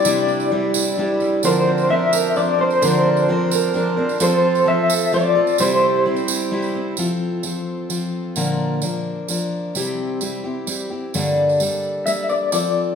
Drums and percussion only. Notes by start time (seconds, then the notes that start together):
0.05 tambourine
0.28 tambourine
0.40 tambourine
0.74 tambourine
1.20 tambourine
1.43 tambourine
1.78 tambourine
2.13 tambourine
2.36 tambourine
2.71 tambourine
2.82 tambourine
3.17 tambourine
3.51 tambourine
3.74 tambourine
4.09 tambourine
4.20 tambourine
4.55 tambourine
4.90 tambourine
5.13 tambourine
5.47 tambourine
5.58 tambourine
6.16 tambourine
6.28 tambourine
6.62 tambourine
6.97 tambourine
7.09 tambourine
7.43 tambourine
7.90 tambourine
8.01 tambourine
8.36 tambourine
8.47 tambourine
8.82 tambourine
9.28 tambourine
9.41 tambourine
9.75 tambourine
9.87 tambourine
10.21 tambourine
10.67 tambourine
10.80 tambourine
11.14 tambourine
11.49 tambourine
11.60 tambourine
11.83 tambourine
12.07 tambourine
12.29 tambourine
12.52 tambourine